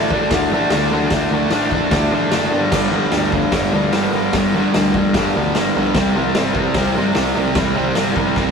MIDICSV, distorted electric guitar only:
0, 0, Header, 1, 2, 480
1, 0, Start_track
1, 0, Tempo, 403497
1, 1323, Time_signature, 4, 2, 24, 8
1, 10125, End_track
2, 0, Start_track
2, 0, Title_t, "Distorted electric guitar"
2, 0, Program_c, 0, 30
2, 0, Note_on_c, 0, 50, 80
2, 0, Note_on_c, 0, 57, 82
2, 0, Note_on_c, 0, 62, 99
2, 126, Note_off_c, 0, 50, 0
2, 141, Note_on_c, 0, 50, 100
2, 142, Note_off_c, 0, 57, 0
2, 156, Note_on_c, 0, 57, 105
2, 162, Note_off_c, 0, 62, 0
2, 167, Note_on_c, 0, 62, 96
2, 354, Note_off_c, 0, 50, 0
2, 365, Note_off_c, 0, 57, 0
2, 369, Note_on_c, 0, 50, 95
2, 380, Note_on_c, 0, 57, 106
2, 389, Note_off_c, 0, 62, 0
2, 393, Note_on_c, 0, 62, 115
2, 607, Note_off_c, 0, 50, 0
2, 621, Note_on_c, 0, 50, 87
2, 624, Note_off_c, 0, 57, 0
2, 638, Note_off_c, 0, 62, 0
2, 638, Note_on_c, 0, 57, 97
2, 643, Note_on_c, 0, 62, 92
2, 846, Note_off_c, 0, 50, 0
2, 857, Note_off_c, 0, 57, 0
2, 860, Note_on_c, 0, 50, 85
2, 872, Note_on_c, 0, 57, 91
2, 878, Note_off_c, 0, 62, 0
2, 883, Note_on_c, 0, 62, 99
2, 1085, Note_off_c, 0, 50, 0
2, 1096, Note_off_c, 0, 57, 0
2, 1099, Note_on_c, 0, 50, 81
2, 1108, Note_off_c, 0, 62, 0
2, 1110, Note_on_c, 0, 57, 84
2, 1113, Note_on_c, 0, 62, 88
2, 1317, Note_off_c, 0, 50, 0
2, 1325, Note_off_c, 0, 57, 0
2, 1332, Note_on_c, 0, 50, 95
2, 1339, Note_on_c, 0, 57, 119
2, 1347, Note_off_c, 0, 62, 0
2, 1352, Note_on_c, 0, 62, 123
2, 1560, Note_off_c, 0, 50, 0
2, 1575, Note_on_c, 0, 50, 90
2, 1581, Note_off_c, 0, 57, 0
2, 1595, Note_on_c, 0, 57, 104
2, 1597, Note_off_c, 0, 62, 0
2, 1601, Note_on_c, 0, 62, 103
2, 1799, Note_off_c, 0, 50, 0
2, 1803, Note_off_c, 0, 57, 0
2, 1813, Note_on_c, 0, 50, 81
2, 1817, Note_on_c, 0, 57, 78
2, 1827, Note_off_c, 0, 62, 0
2, 1832, Note_on_c, 0, 62, 87
2, 2040, Note_off_c, 0, 50, 0
2, 2049, Note_off_c, 0, 57, 0
2, 2054, Note_on_c, 0, 50, 88
2, 2063, Note_on_c, 0, 57, 94
2, 2065, Note_off_c, 0, 62, 0
2, 2070, Note_on_c, 0, 62, 112
2, 2270, Note_off_c, 0, 50, 0
2, 2279, Note_off_c, 0, 57, 0
2, 2285, Note_on_c, 0, 50, 116
2, 2293, Note_on_c, 0, 57, 101
2, 2301, Note_off_c, 0, 62, 0
2, 2306, Note_on_c, 0, 62, 116
2, 2510, Note_off_c, 0, 50, 0
2, 2524, Note_on_c, 0, 50, 78
2, 2527, Note_off_c, 0, 57, 0
2, 2542, Note_on_c, 0, 57, 81
2, 2544, Note_off_c, 0, 62, 0
2, 2548, Note_on_c, 0, 62, 86
2, 2736, Note_off_c, 0, 50, 0
2, 2750, Note_on_c, 0, 50, 90
2, 2755, Note_off_c, 0, 57, 0
2, 2767, Note_off_c, 0, 62, 0
2, 2769, Note_on_c, 0, 57, 91
2, 2772, Note_on_c, 0, 62, 102
2, 2981, Note_off_c, 0, 50, 0
2, 2986, Note_on_c, 0, 43, 91
2, 2990, Note_off_c, 0, 57, 0
2, 3002, Note_on_c, 0, 50, 94
2, 3012, Note_on_c, 0, 55, 116
2, 3215, Note_off_c, 0, 43, 0
2, 3216, Note_off_c, 0, 50, 0
2, 3220, Note_on_c, 0, 43, 93
2, 3230, Note_on_c, 0, 50, 119
2, 3235, Note_off_c, 0, 55, 0
2, 3240, Note_on_c, 0, 55, 122
2, 3471, Note_off_c, 0, 50, 0
2, 3475, Note_off_c, 0, 43, 0
2, 3480, Note_on_c, 0, 43, 105
2, 3486, Note_on_c, 0, 50, 101
2, 3490, Note_off_c, 0, 55, 0
2, 3494, Note_on_c, 0, 55, 94
2, 3703, Note_off_c, 0, 50, 0
2, 3704, Note_off_c, 0, 43, 0
2, 3709, Note_on_c, 0, 43, 85
2, 3717, Note_on_c, 0, 50, 75
2, 3726, Note_off_c, 0, 55, 0
2, 3731, Note_on_c, 0, 55, 104
2, 3949, Note_off_c, 0, 43, 0
2, 3952, Note_off_c, 0, 50, 0
2, 3954, Note_on_c, 0, 43, 100
2, 3966, Note_on_c, 0, 50, 105
2, 3971, Note_off_c, 0, 55, 0
2, 3976, Note_on_c, 0, 55, 90
2, 4170, Note_off_c, 0, 43, 0
2, 4184, Note_on_c, 0, 43, 100
2, 4186, Note_off_c, 0, 50, 0
2, 4200, Note_on_c, 0, 50, 98
2, 4206, Note_off_c, 0, 55, 0
2, 4210, Note_on_c, 0, 55, 115
2, 4413, Note_off_c, 0, 43, 0
2, 4424, Note_off_c, 0, 50, 0
2, 4428, Note_on_c, 0, 43, 83
2, 4438, Note_on_c, 0, 50, 92
2, 4451, Note_off_c, 0, 55, 0
2, 4456, Note_on_c, 0, 55, 90
2, 4660, Note_off_c, 0, 43, 0
2, 4666, Note_off_c, 0, 50, 0
2, 4674, Note_on_c, 0, 43, 101
2, 4680, Note_on_c, 0, 50, 90
2, 4689, Note_off_c, 0, 55, 0
2, 4694, Note_on_c, 0, 55, 102
2, 4897, Note_off_c, 0, 43, 0
2, 4911, Note_off_c, 0, 50, 0
2, 4912, Note_on_c, 0, 43, 87
2, 4925, Note_on_c, 0, 50, 88
2, 4929, Note_off_c, 0, 55, 0
2, 4934, Note_on_c, 0, 55, 91
2, 5151, Note_off_c, 0, 43, 0
2, 5166, Note_on_c, 0, 43, 106
2, 5167, Note_off_c, 0, 50, 0
2, 5181, Note_on_c, 0, 50, 118
2, 5192, Note_off_c, 0, 55, 0
2, 5197, Note_on_c, 0, 55, 125
2, 5403, Note_off_c, 0, 43, 0
2, 5414, Note_off_c, 0, 50, 0
2, 5417, Note_on_c, 0, 43, 93
2, 5429, Note_on_c, 0, 50, 109
2, 5435, Note_off_c, 0, 55, 0
2, 5440, Note_on_c, 0, 55, 100
2, 5630, Note_off_c, 0, 43, 0
2, 5643, Note_off_c, 0, 50, 0
2, 5645, Note_on_c, 0, 43, 83
2, 5657, Note_on_c, 0, 50, 84
2, 5665, Note_off_c, 0, 55, 0
2, 5670, Note_on_c, 0, 55, 83
2, 5885, Note_off_c, 0, 43, 0
2, 5891, Note_off_c, 0, 50, 0
2, 5899, Note_on_c, 0, 43, 95
2, 5906, Note_on_c, 0, 50, 98
2, 5913, Note_off_c, 0, 55, 0
2, 5917, Note_on_c, 0, 55, 121
2, 6106, Note_off_c, 0, 43, 0
2, 6117, Note_off_c, 0, 50, 0
2, 6121, Note_on_c, 0, 43, 107
2, 6131, Note_off_c, 0, 55, 0
2, 6131, Note_on_c, 0, 50, 97
2, 6136, Note_on_c, 0, 55, 103
2, 6360, Note_off_c, 0, 43, 0
2, 6374, Note_on_c, 0, 43, 81
2, 6378, Note_off_c, 0, 50, 0
2, 6392, Note_on_c, 0, 50, 102
2, 6399, Note_off_c, 0, 55, 0
2, 6404, Note_on_c, 0, 55, 91
2, 6589, Note_off_c, 0, 43, 0
2, 6597, Note_off_c, 0, 50, 0
2, 6604, Note_on_c, 0, 43, 81
2, 6612, Note_off_c, 0, 55, 0
2, 6612, Note_on_c, 0, 50, 95
2, 6617, Note_on_c, 0, 55, 110
2, 6836, Note_off_c, 0, 43, 0
2, 6850, Note_on_c, 0, 43, 76
2, 6853, Note_off_c, 0, 50, 0
2, 6867, Note_on_c, 0, 50, 89
2, 6868, Note_off_c, 0, 55, 0
2, 6873, Note_on_c, 0, 55, 97
2, 6935, Note_off_c, 0, 62, 0
2, 7070, Note_off_c, 0, 50, 0
2, 7072, Note_off_c, 0, 43, 0
2, 7075, Note_on_c, 0, 48, 115
2, 7079, Note_off_c, 0, 55, 0
2, 7083, Note_on_c, 0, 55, 124
2, 7093, Note_on_c, 0, 60, 108
2, 7316, Note_off_c, 0, 48, 0
2, 7320, Note_on_c, 0, 48, 93
2, 7328, Note_off_c, 0, 55, 0
2, 7333, Note_on_c, 0, 55, 104
2, 7339, Note_off_c, 0, 60, 0
2, 7344, Note_on_c, 0, 60, 107
2, 7550, Note_off_c, 0, 48, 0
2, 7554, Note_on_c, 0, 48, 89
2, 7560, Note_off_c, 0, 55, 0
2, 7565, Note_on_c, 0, 55, 94
2, 7572, Note_off_c, 0, 60, 0
2, 7577, Note_on_c, 0, 60, 91
2, 7797, Note_off_c, 0, 48, 0
2, 7802, Note_on_c, 0, 48, 94
2, 7807, Note_off_c, 0, 55, 0
2, 7812, Note_on_c, 0, 55, 103
2, 7821, Note_off_c, 0, 60, 0
2, 7826, Note_on_c, 0, 60, 98
2, 8017, Note_off_c, 0, 48, 0
2, 8031, Note_on_c, 0, 48, 93
2, 8034, Note_off_c, 0, 55, 0
2, 8042, Note_off_c, 0, 60, 0
2, 8048, Note_on_c, 0, 55, 103
2, 8056, Note_on_c, 0, 60, 127
2, 8269, Note_off_c, 0, 48, 0
2, 8281, Note_off_c, 0, 55, 0
2, 8283, Note_on_c, 0, 48, 92
2, 8287, Note_off_c, 0, 60, 0
2, 8295, Note_on_c, 0, 55, 88
2, 8301, Note_on_c, 0, 60, 105
2, 8493, Note_off_c, 0, 48, 0
2, 8499, Note_off_c, 0, 55, 0
2, 8506, Note_off_c, 0, 60, 0
2, 8508, Note_on_c, 0, 48, 101
2, 8513, Note_on_c, 0, 55, 91
2, 8521, Note_on_c, 0, 60, 102
2, 8728, Note_off_c, 0, 48, 0
2, 8742, Note_on_c, 0, 48, 84
2, 8745, Note_off_c, 0, 55, 0
2, 8751, Note_off_c, 0, 60, 0
2, 8760, Note_on_c, 0, 55, 94
2, 8765, Note_on_c, 0, 60, 94
2, 8974, Note_off_c, 0, 48, 0
2, 8984, Note_off_c, 0, 55, 0
2, 8988, Note_on_c, 0, 48, 103
2, 8991, Note_off_c, 0, 60, 0
2, 8998, Note_on_c, 0, 55, 105
2, 9005, Note_on_c, 0, 60, 121
2, 9216, Note_off_c, 0, 48, 0
2, 9227, Note_off_c, 0, 55, 0
2, 9230, Note_on_c, 0, 48, 99
2, 9233, Note_off_c, 0, 60, 0
2, 9241, Note_on_c, 0, 55, 93
2, 9247, Note_on_c, 0, 60, 99
2, 9459, Note_off_c, 0, 48, 0
2, 9473, Note_on_c, 0, 48, 87
2, 9477, Note_off_c, 0, 55, 0
2, 9484, Note_off_c, 0, 60, 0
2, 9491, Note_on_c, 0, 55, 89
2, 9499, Note_on_c, 0, 60, 85
2, 9695, Note_off_c, 0, 48, 0
2, 9705, Note_off_c, 0, 55, 0
2, 9710, Note_on_c, 0, 48, 97
2, 9720, Note_on_c, 0, 55, 91
2, 9721, Note_off_c, 0, 60, 0
2, 9735, Note_on_c, 0, 60, 86
2, 9941, Note_off_c, 0, 48, 0
2, 9948, Note_off_c, 0, 55, 0
2, 9955, Note_on_c, 0, 48, 88
2, 9959, Note_off_c, 0, 60, 0
2, 9962, Note_on_c, 0, 55, 105
2, 9973, Note_on_c, 0, 60, 120
2, 10125, Note_off_c, 0, 48, 0
2, 10125, Note_off_c, 0, 55, 0
2, 10125, Note_off_c, 0, 60, 0
2, 10125, End_track
0, 0, End_of_file